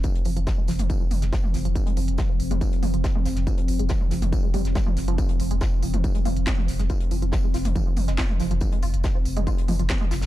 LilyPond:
<<
  \new Staff \with { instrumentName = "Ambient pad" } { \clef bass \time 4/4 \key f \minor \tempo 4 = 140 <f c'>1~ | <f c'>1~ | <f c'>1~ | <f c'>1~ |
<f c'>1~ | <f c'>1 | }
  \new Staff \with { instrumentName = "Synth arpeggio sound" } { \clef bass \time 4/4 \key f \minor f16 r16 f16 f16 r16 aes16 f16 r16 f16 f16 r16 aes16 f16 r16 f16 f16 | r16 aes16 f16 r16 f16 f16 r16 aes16 f16 r16 f16 f16 r16 aes16 f16 r16 | f16 f16 r16 aes16 f16 r16 f16 f16 r16 aes16 g16 r16 g16 f16 r16 f16 | f16 f16 r16 aes16 f'16 r16 f16 f16 r16 aes16 f'16 r16 f16 f16 r16 aes16 |
f'16 r16 f16 f16 r16 aes16 f'16 r16 f16 f16 r16 aes16 f'16 r16 f16 f16 | r16 aes16 f'16 r16 f16 f16 r16 aes16 f'16 r16 f16 f16 r16 aes16 f'16 r16 | }
  \new Staff \with { instrumentName = "Sub bass" } { \clef bass \time 4/4 \key f \minor r8 f,,16 f,,16 r8 f,,16 f,,16 r8 f,,16 f,,16 r8 f,,16 f,,16 | r8 f,,16 f,,16 r8 f,,16 f,,16 r8 f,,16 f,,16 r8 f,,16 f,,16 | r8 f,,16 f,,16 r8 f,,16 f,,16 r8 f,,16 f,,16 r8 f,,16 f,,16 | r8 f,,16 f,,16 r8 f,,16 f,,16 r8 f,,16 f,,16 r8 f,,16 f,,16 |
r8 f,,16 f,,16 r8 f,,16 f,,16 r8 f,,16 f,,16 r8 f,,16 f,,16 | r8 f,,16 f,,16 r8 f,,16 f,,16 r8 f,,16 f,,16 r8 f,,16 f,,16 | }
  \new DrumStaff \with { instrumentName = "Drums" } \drummode { \time 4/4 <hh bd tamb>16 hh16 <hho tamb>16 hh16 <hh bd sn tamb>8 <hho sn tamb>16 <hh toml>16 <hh bd tamb>8 <hho tamb toml>16 <hh sn>16 <hh bd sn tamb>16 toml16 <hho sn tamb>16 hh16 | <hh bd tamb>16 hh16 <hho tamb>16 hh16 <hh bd sn tamb>8 <hho tamb>16 <hh toml>16 <hh bd tamb>16 hh16 <hho tamb toml>16 hh16 <hh bd sn tamb>16 toml16 <hho sn tamb>16 <hh sn>16 | <hh bd tamb>16 hh16 <hho tamb>16 hh16 <hh bd sn tamb>16 toml16 <hho sn tamb>16 <hh toml>16 <hh bd tamb>8 <hho tamb toml>16 <hh sn>16 <hh bd sn tamb>16 toml16 <hho sn tamb>16 hh16 | <hh bd tamb>16 hh16 <hho tamb>16 hh16 <hh bd sn tamb>8 <hho tamb>16 <hh toml>16 <hh bd tamb>16 hh16 <hho tamb toml>16 hh16 <hh bd sn tamb>16 toml16 <hho sn tamb>16 <hh sn>16 |
<hh bd tamb>16 hh16 <hho tamb>16 hh16 <hh bd sn tamb>8 <hho sn tamb>16 <hh toml>16 <hh bd tamb>8 <hho tamb toml>16 <hh sn>16 <hh bd sn tamb>16 toml16 <hho sn tamb>16 hh16 | <hh bd tamb>16 hh16 <hho tamb>16 hh16 <hh bd sn tamb>8 <hho tamb>16 <hh toml>16 <hh bd tamb>16 hh16 <hho tamb toml>16 hh16 <hh bd sn tamb>16 toml16 <hho sn tamb>16 <hh sn tamb>16 | }
>>